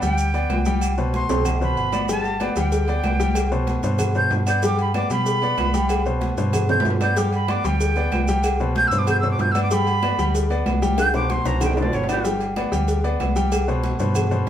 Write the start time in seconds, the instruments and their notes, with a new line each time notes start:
0.02 fm bass D2, grand piano G3 G4 G5, flute G5, low agogo, maracas
0.18 high conga, maracas
0.34 grand piano B3 B4 D5, high conga, low agogo, maracas
0.50 fm bass C2, high conga, low timbale, low agogo, claves, maracas
0.65 grand piano G3 G4 G5, high conga, maracas
0.81 high conga, low agogo, claves, maracas
0.98 grand piano B2 B4 C5, high conga, maracas
1.14 flute C6, high conga, low timbale, low agogo, maracas
1.29 fm bass C2, grand piano B2 G4 C5, high timbale, maracas
1.45 high conga, low conga, high timbale, low agogo, claves, maracas
1.61 grand piano B2 B4 C5, flute B5, high conga, low conga, maracas
1.77 fm bass G1, high conga, low agogo, maracas
1.92 grand piano B3 B4 D5, high conga, low timbale, low agogo, claves, maracas
2.09 grand piano G3 G4 G5, flute A5, cowbell, high conga, maracas
2.24 high conga, low agogo, maracas
2.40 grand piano B3 B4 D5, flute G5, cowbell, high conga, low timbale, low agogo, claves, maracas
2.56 fm bass D2, grand piano G3 G4 G5, flute G5, low agogo, maracas
2.72 cowbell, high conga, maracas
2.88 grand piano B3 B4 D5, high conga, low agogo, maracas
3.04 fm bass C2, cowbell, high conga, low timbale, low agogo, claves, maracas
3.20 grand piano G3 G4 G5, cowbell, high conga, maracas
3.35 cowbell, high conga, low agogo, claves, maracas
3.52 grand piano B2 B4 C5, high conga, maracas
3.67 cowbell, high conga, low timbale, low agogo, maracas
3.83 fm bass G2, grand piano B2 B4 C5, cowbell, high conga, maracas
3.99 cowbell, high conga, low conga, low agogo, claves, maracas
4.15 grand piano B2 B4 C5, flute G6, high conga, maracas
4.31 fm bass G2, cowbell, high conga, low timbale, low agogo, maracas
4.47 grand piano B3 B4 D5, flute G6, cowbell, low agogo, claves, maracas
4.63 grand piano G3 G4 G5, flute D6, cowbell, high conga, maracas
4.79 flute B5, high conga, low agogo, maracas
4.94 grand piano B3 B4 D5, flute D6, cowbell, high conga, low timbale, low agogo, claves, maracas
5.10 fm bass B2, grand piano G3 G4 G5, flute B5, low agogo, maracas
5.26 cowbell, maracas
5.42 grand piano B3 B4 D5, high conga, low agogo, maracas
5.58 fm bass C2, cowbell, high conga, low timbale, low agogo, claves, maracas
5.74 grand piano G3 G4 G5, cowbell, high conga, maracas
5.89 cowbell, high conga, low agogo, claves, maracas
6.06 grand piano B2 B4 C5, high conga, maracas
6.21 cowbell, high conga, low timbale, low agogo, maracas
6.37 fm bass G2, grand piano B2 B4 C5, cowbell, high conga, maracas
6.53 cowbell, high conga, low conga, low agogo, claves, maracas
6.69 grand piano B2 B4 C5, flute G6, high conga, low conga, high timbale, maracas
6.80 low timbale
6.85 fm bass G2, cowbell, high conga, low agogo, maracas
6.90 low timbale
7.01 grand piano B3 B4 D5, flute G6, cowbell, low timbale, low agogo, claves, maracas
7.17 grand piano G3 G4 G5, flute D6, cowbell, maracas
7.33 flute B5, high conga, low agogo, maracas
7.48 grand piano B3 B4 D5, flute D6, cowbell, high conga, low timbale, low agogo, claves, maracas
7.64 fm bass D2, grand piano G3 G4 G5, flute G5, low agogo, maracas
7.80 cowbell, maracas
7.96 grand piano B3 B4 D5, high conga, low agogo, maracas
8.12 fm bass C2, cowbell, high conga, low timbale, low agogo, claves, maracas
8.28 grand piano G3 G4 G5, cowbell, high conga, maracas
8.44 cowbell, high conga, low agogo, claves, maracas
8.60 grand piano B2 B4 C5, high conga, maracas
8.75 flute G6, cowbell, high conga, low timbale, low agogo, maracas
8.87 flute E6
8.91 fm bass G2, grand piano B2 B4 C5, cowbell, high conga, maracas
8.98 flute D6
9.07 flute G6, cowbell, high conga, low conga, low agogo, claves, maracas
9.20 grand piano B2 B4, flute E6, high conga, low conga, maracas
9.24 grand piano C5
9.30 flute D6
9.39 fm bass G2, flute G6, cowbell, high conga, low timbale, low agogo, maracas
9.51 grand piano B3, flute E6, high conga, maracas
9.55 grand piano B4 D5, cowbell, low agogo, claves
9.62 flute D6
9.71 grand piano G3 G4 G5, flute B5, cowbell, high conga, maracas
9.87 high conga, low agogo, maracas
10.02 grand piano B3 B4 D5, cowbell, high conga, low timbale, low agogo, claves, maracas
10.18 fm bass D2, grand piano G3 G4 G5, low agogo, maracas
10.34 cowbell, high conga, maracas
10.50 grand piano B3 B4 D5, high conga, low agogo, maracas
10.66 fm bass C2, cowbell, high conga, low timbale, low agogo, claves, maracas
10.82 grand piano G3 G4 G5, cowbell, high conga, maracas
10.98 flute G6, cowbell, high bongo, high conga, low agogo, claves, maracas
11.14 grand piano B2 B4 C5, flute D6, high bongo, high conga, maracas
11.30 flute C6, cowbell, high conga, low timbale, low agogo, maracas
11.45 fm bass C2, grand piano B2 B4 C5, flute A#5, cowbell, low bongo, high conga, maracas
11.61 flute G5, cowbell, low bongo, high conga, low conga, high timbale, low agogo, claves, maracas
11.71 high timbale
11.77 grand piano B2 B4 C5, flute D5, low bongo, high conga, maracas
11.82 low timbale
11.93 fm bass G1, flute C#5, cowbell, high conga, low agogo, maracas
12.04 low timbale
12.09 grand piano B3 B4 D5, flute G4, cowbell, low bongo, low agogo, claves, maracas
12.14 low timbale
12.24 grand piano G3 G4 G5, cowbell, high conga, maracas
12.41 high conga, low agogo, maracas
12.56 grand piano B3 B4 D5, cowbell, high conga, low timbale, low agogo, claves, maracas
12.72 fm bass D2, grand piano G3 G4 G5, low agogo, maracas
12.88 cowbell, high conga, maracas
13.04 grand piano B3 B4 D5, high conga, low agogo, maracas
13.20 fm bass C2, cowbell, high conga, low timbale, low agogo, claves, maracas
13.36 grand piano G3 G4 G5, cowbell, high conga, maracas
13.52 cowbell, high conga, low agogo, claves, maracas
13.68 grand piano B2 B4 C5, high conga, maracas
13.84 cowbell, high conga, low timbale, low agogo, maracas
13.99 fm bass G2, grand piano B2 B4 C5, cowbell, high conga, maracas
14.15 cowbell, high conga, low conga, low agogo, claves, maracas
14.31 grand piano B2 B4 C5, high conga, low conga, maracas